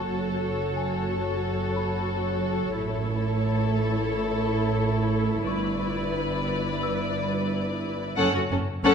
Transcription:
Already playing: F#1 F#2 F#4 A4 C#5
0.77 G#5
1.76 B5
2.77 A1 A2 E4 A4 C#5
5.47 G1 G2 B4 D5 C#6
6.83 E6
8.16 F#1 F#2 C#4 A4 F#5
8.33 F#2 C#4 F#4 C#5
8.50 F#1 F#2 C#4 A4
8.83 F#1 F#2 C#4 A4 F#5

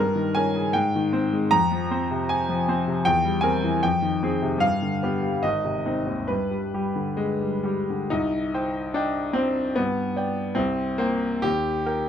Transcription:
Already playing: G2 A#4
0.15 D#3
0.35 C#4 A#4 G#5
0.56 C#3
0.73 G#2 G5
0.95 D#3
1.13 C4 C5
1.33 G#3
1.51 F2 A#5
1.72 F3
1.91 C4 C5
2.11 C3
2.29 G#5
2.49 F3
2.68 C4 C5
2.88 C3
3.05 E2 G5
3.25 G3
3.41 C4 A#4 G#5
3.64 E3
3.83 F2 G5
4.02 D#3
4.23 C4 G#4
4.42 C3
4.58 G2 F5
4.82 D3
5.03 B3 G4
5.23 G3
5.43 G#1 D#5
5.65 C3
5.86 C4 D#4
6.07 D#2
6.28 G2 B4
6.51 G3
6.74 G3 G4
6.96 D3
7.17 G#3
7.41 G3
7.63 G3 G4
7.90 D3
8.10 C2 D#4
8.54 C5 G5
8.94 D4 D#5 G5
9.33 C4 C5 G5
9.76 G2 B3
10.16 D5 G5
10.55 C2 C4
10.98 A#3 C5 G5
11.42 D#2 G4
11.86 A#4 G5

